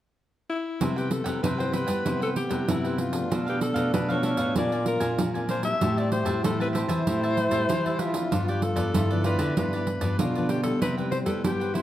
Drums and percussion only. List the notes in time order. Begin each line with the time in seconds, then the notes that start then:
0.81 pandeiro
0.98 pandeiro
1.11 pandeiro
1.26 pandeiro
1.44 pandeiro
1.60 pandeiro
1.73 pandeiro
1.88 pandeiro
2.06 pandeiro
2.22 pandeiro
2.36 pandeiro
2.51 pandeiro
2.68 pandeiro
2.85 pandeiro
2.98 pandeiro
3.13 pandeiro
3.32 pandeiro
3.48 pandeiro
3.61 pandeiro
3.76 pandeiro
3.94 pandeiro
4.10 pandeiro
4.23 pandeiro
4.37 pandeiro
4.56 pandeiro
4.72 pandeiro
4.86 pandeiro
5.01 pandeiro
5.19 pandeiro
5.35 pandeiro
5.49 pandeiro
5.63 pandeiro
5.81 pandeiro
5.98 pandeiro
6.12 pandeiro
6.26 pandeiro
6.44 pandeiro
6.61 pandeiro
6.75 pandeiro
6.89 pandeiro
7.07 pandeiro
7.24 pandeiro
7.37 pandeiro
7.51 pandeiro
7.69 pandeiro
7.86 pandeiro
7.99 pandeiro
8.14 pandeiro
8.32 pandeiro
8.48 pandeiro
8.62 pandeiro
8.76 pandeiro
8.94 pandeiro
9.11 pandeiro
9.24 pandeiro
9.39 pandeiro
9.57 pandeiro
9.73 pandeiro
9.87 pandeiro
10.01 pandeiro
10.19 pandeiro
10.35 pandeiro
10.49 pandeiro
10.64 pandeiro
10.82 pandeiro
10.98 pandeiro
11.12 pandeiro
11.26 pandeiro
11.44 pandeiro
11.61 pandeiro
11.75 pandeiro